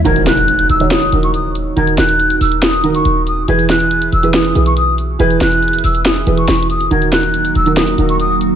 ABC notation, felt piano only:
X:1
M:4/4
L:1/16
Q:1/4=140
K:Ebphr
V:1 name="Felt piano"
[E,EGB]6- [E,EGB] [E,EGd]3 [E,EGB]6 | [E,EGB]8 z2 [E,EGB]6 | [=E,=E^G=B]6- [E,EGB] [E,EGB]3 [E,EGB]6 | [=E,=E^G=B]8 z2 [E,EGB]6 |
[E,EGB]6- [E,EGB] [E,EGB]3 [E,EGB]6 |]